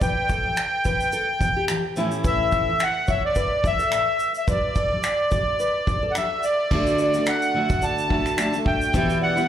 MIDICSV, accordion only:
0, 0, Header, 1, 2, 480
1, 0, Start_track
1, 0, Key_signature, 2, "major"
1, 0, Tempo, 557621
1, 14, Time_signature, 4, 2, 24, 8
1, 8161, End_track
2, 0, Start_track
2, 0, Title_t, "Accordion"
2, 0, Program_c, 0, 21
2, 18, Note_on_c, 0, 79, 102
2, 1422, Note_off_c, 0, 79, 0
2, 1951, Note_on_c, 0, 76, 94
2, 2434, Note_on_c, 0, 78, 100
2, 2437, Note_off_c, 0, 76, 0
2, 2665, Note_on_c, 0, 76, 86
2, 2671, Note_off_c, 0, 78, 0
2, 2783, Note_off_c, 0, 76, 0
2, 2803, Note_on_c, 0, 74, 87
2, 3153, Note_off_c, 0, 74, 0
2, 3155, Note_on_c, 0, 76, 86
2, 3722, Note_off_c, 0, 76, 0
2, 3767, Note_on_c, 0, 76, 65
2, 3858, Note_off_c, 0, 76, 0
2, 3872, Note_on_c, 0, 74, 80
2, 5263, Note_on_c, 0, 78, 66
2, 5270, Note_off_c, 0, 74, 0
2, 5306, Note_off_c, 0, 78, 0
2, 5314, Note_on_c, 0, 76, 78
2, 5548, Note_on_c, 0, 74, 87
2, 5552, Note_off_c, 0, 76, 0
2, 6022, Note_off_c, 0, 74, 0
2, 6035, Note_on_c, 0, 74, 82
2, 6269, Note_on_c, 0, 78, 94
2, 6272, Note_off_c, 0, 74, 0
2, 6747, Note_on_c, 0, 81, 105
2, 6757, Note_off_c, 0, 78, 0
2, 7216, Note_off_c, 0, 81, 0
2, 7229, Note_on_c, 0, 81, 86
2, 7446, Note_off_c, 0, 81, 0
2, 7461, Note_on_c, 0, 79, 94
2, 7905, Note_off_c, 0, 79, 0
2, 7942, Note_on_c, 0, 78, 97
2, 8161, Note_off_c, 0, 78, 0
2, 8161, End_track
0, 0, End_of_file